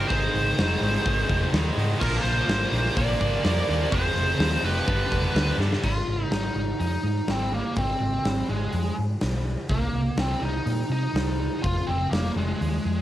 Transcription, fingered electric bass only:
0, 0, Header, 1, 2, 480
1, 0, Start_track
1, 0, Tempo, 477707
1, 101, Time_signature, 4, 2, 24, 8
1, 5862, Tempo, 483481
1, 12992, End_track
2, 0, Start_track
2, 0, Title_t, "Fingered electric bass"
2, 0, Program_c, 0, 33
2, 98, Note_on_c, 0, 32, 104
2, 261, Note_off_c, 0, 32, 0
2, 344, Note_on_c, 0, 32, 89
2, 504, Note_off_c, 0, 32, 0
2, 587, Note_on_c, 0, 29, 91
2, 746, Note_off_c, 0, 29, 0
2, 814, Note_on_c, 0, 32, 88
2, 977, Note_off_c, 0, 32, 0
2, 1058, Note_on_c, 0, 32, 95
2, 1219, Note_off_c, 0, 32, 0
2, 1300, Note_on_c, 0, 29, 87
2, 1461, Note_off_c, 0, 29, 0
2, 1535, Note_on_c, 0, 39, 107
2, 1697, Note_off_c, 0, 39, 0
2, 1776, Note_on_c, 0, 44, 97
2, 1938, Note_off_c, 0, 44, 0
2, 2021, Note_on_c, 0, 34, 101
2, 2181, Note_off_c, 0, 34, 0
2, 2252, Note_on_c, 0, 34, 94
2, 2415, Note_off_c, 0, 34, 0
2, 2481, Note_on_c, 0, 32, 98
2, 2647, Note_off_c, 0, 32, 0
2, 2733, Note_on_c, 0, 34, 85
2, 2896, Note_off_c, 0, 34, 0
2, 2981, Note_on_c, 0, 34, 95
2, 3141, Note_off_c, 0, 34, 0
2, 3218, Note_on_c, 0, 32, 87
2, 3379, Note_off_c, 0, 32, 0
2, 3462, Note_on_c, 0, 41, 101
2, 3622, Note_off_c, 0, 41, 0
2, 3707, Note_on_c, 0, 39, 97
2, 3865, Note_off_c, 0, 39, 0
2, 3941, Note_on_c, 0, 29, 99
2, 4101, Note_off_c, 0, 29, 0
2, 4174, Note_on_c, 0, 29, 90
2, 4336, Note_off_c, 0, 29, 0
2, 4410, Note_on_c, 0, 39, 103
2, 4574, Note_off_c, 0, 39, 0
2, 4646, Note_on_c, 0, 29, 83
2, 4812, Note_off_c, 0, 29, 0
2, 4895, Note_on_c, 0, 31, 101
2, 5058, Note_off_c, 0, 31, 0
2, 5139, Note_on_c, 0, 29, 87
2, 5301, Note_off_c, 0, 29, 0
2, 5372, Note_on_c, 0, 38, 98
2, 5537, Note_off_c, 0, 38, 0
2, 5605, Note_on_c, 0, 43, 99
2, 5773, Note_off_c, 0, 43, 0
2, 5864, Note_on_c, 0, 32, 91
2, 6025, Note_off_c, 0, 32, 0
2, 6108, Note_on_c, 0, 32, 77
2, 6267, Note_off_c, 0, 32, 0
2, 6334, Note_on_c, 0, 32, 87
2, 6498, Note_off_c, 0, 32, 0
2, 6578, Note_on_c, 0, 32, 79
2, 6740, Note_off_c, 0, 32, 0
2, 6818, Note_on_c, 0, 41, 86
2, 6980, Note_off_c, 0, 41, 0
2, 7053, Note_on_c, 0, 44, 80
2, 7216, Note_off_c, 0, 44, 0
2, 7292, Note_on_c, 0, 32, 89
2, 7618, Note_off_c, 0, 32, 0
2, 7774, Note_on_c, 0, 32, 90
2, 7937, Note_off_c, 0, 32, 0
2, 8014, Note_on_c, 0, 32, 84
2, 8177, Note_off_c, 0, 32, 0
2, 8261, Note_on_c, 0, 32, 91
2, 8421, Note_off_c, 0, 32, 0
2, 8502, Note_on_c, 0, 32, 78
2, 8662, Note_off_c, 0, 32, 0
2, 8739, Note_on_c, 0, 41, 94
2, 8900, Note_off_c, 0, 41, 0
2, 8988, Note_on_c, 0, 44, 81
2, 9146, Note_off_c, 0, 44, 0
2, 9224, Note_on_c, 0, 35, 100
2, 9546, Note_off_c, 0, 35, 0
2, 9700, Note_on_c, 0, 36, 97
2, 9861, Note_off_c, 0, 36, 0
2, 9930, Note_on_c, 0, 36, 87
2, 10095, Note_off_c, 0, 36, 0
2, 10167, Note_on_c, 0, 36, 98
2, 10333, Note_off_c, 0, 36, 0
2, 10408, Note_on_c, 0, 36, 77
2, 10574, Note_off_c, 0, 36, 0
2, 10654, Note_on_c, 0, 46, 86
2, 10818, Note_off_c, 0, 46, 0
2, 10886, Note_on_c, 0, 48, 81
2, 11053, Note_off_c, 0, 48, 0
2, 11125, Note_on_c, 0, 36, 93
2, 11455, Note_off_c, 0, 36, 0
2, 11624, Note_on_c, 0, 29, 95
2, 11785, Note_off_c, 0, 29, 0
2, 11867, Note_on_c, 0, 29, 83
2, 12028, Note_off_c, 0, 29, 0
2, 12101, Note_on_c, 0, 29, 84
2, 12264, Note_off_c, 0, 29, 0
2, 12338, Note_on_c, 0, 29, 87
2, 12502, Note_off_c, 0, 29, 0
2, 12590, Note_on_c, 0, 39, 86
2, 12750, Note_off_c, 0, 39, 0
2, 12828, Note_on_c, 0, 41, 81
2, 12990, Note_off_c, 0, 41, 0
2, 12992, End_track
0, 0, End_of_file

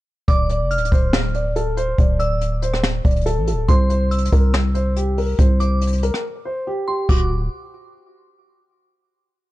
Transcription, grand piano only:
0, 0, Header, 1, 2, 480
1, 0, Start_track
1, 0, Key_signature, -1, "minor"
1, 0, Tempo, 425532
1, 318, Time_signature, 4, 2, 24, 8
1, 10734, End_track
2, 0, Start_track
2, 0, Title_t, "Grand piano"
2, 0, Program_c, 0, 0
2, 315, Note_on_c, 0, 74, 86
2, 540, Note_off_c, 0, 74, 0
2, 562, Note_on_c, 0, 74, 86
2, 1011, Note_off_c, 0, 74, 0
2, 1038, Note_on_c, 0, 72, 86
2, 1262, Note_off_c, 0, 72, 0
2, 1519, Note_on_c, 0, 74, 75
2, 1742, Note_off_c, 0, 74, 0
2, 1759, Note_on_c, 0, 69, 86
2, 1983, Note_off_c, 0, 69, 0
2, 1998, Note_on_c, 0, 72, 84
2, 2222, Note_off_c, 0, 72, 0
2, 2238, Note_on_c, 0, 74, 76
2, 2455, Note_off_c, 0, 74, 0
2, 2472, Note_on_c, 0, 74, 84
2, 2926, Note_off_c, 0, 74, 0
2, 2959, Note_on_c, 0, 72, 75
2, 3183, Note_off_c, 0, 72, 0
2, 3434, Note_on_c, 0, 74, 70
2, 3660, Note_off_c, 0, 74, 0
2, 3676, Note_on_c, 0, 69, 92
2, 3901, Note_off_c, 0, 69, 0
2, 3923, Note_on_c, 0, 69, 78
2, 4145, Note_off_c, 0, 69, 0
2, 4158, Note_on_c, 0, 72, 85
2, 4378, Note_off_c, 0, 72, 0
2, 4395, Note_on_c, 0, 72, 78
2, 4847, Note_off_c, 0, 72, 0
2, 4879, Note_on_c, 0, 70, 85
2, 5102, Note_off_c, 0, 70, 0
2, 5353, Note_on_c, 0, 72, 83
2, 5579, Note_off_c, 0, 72, 0
2, 5602, Note_on_c, 0, 67, 76
2, 5824, Note_off_c, 0, 67, 0
2, 5844, Note_on_c, 0, 70, 78
2, 6065, Note_off_c, 0, 70, 0
2, 6080, Note_on_c, 0, 72, 78
2, 6303, Note_off_c, 0, 72, 0
2, 6320, Note_on_c, 0, 72, 74
2, 6770, Note_off_c, 0, 72, 0
2, 6803, Note_on_c, 0, 70, 85
2, 7025, Note_off_c, 0, 70, 0
2, 7280, Note_on_c, 0, 72, 74
2, 7503, Note_off_c, 0, 72, 0
2, 7525, Note_on_c, 0, 67, 86
2, 7744, Note_off_c, 0, 67, 0
2, 7761, Note_on_c, 0, 67, 73
2, 7984, Note_off_c, 0, 67, 0
2, 7997, Note_on_c, 0, 66, 87
2, 8221, Note_off_c, 0, 66, 0
2, 10734, End_track
0, 0, End_of_file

